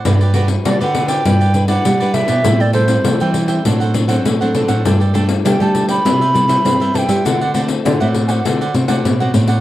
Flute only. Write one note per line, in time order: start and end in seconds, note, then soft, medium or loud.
0.66 0.80 D5 medium
0.81 1.10 F#5 loud
1.08 1.67 G5 medium
1.68 2.15 F#5 loud
2.14 2.63 E5 medium
2.61 2.73 D5 medium
2.74 3.30 C5 medium
5.46 5.64 G5 medium
5.62 5.89 A5 medium
5.90 6.96 B5 loud
6.95 7.27 G5 medium
6.95 6.99 A5 medium
7.25 7.54 F#5 medium
7.55 7.61 F#5 medium
7.86 7.92 D5 medium
8.00 8.07 E5 medium
8.28 8.85 F#5 medium
8.28 8.32 G#5 medium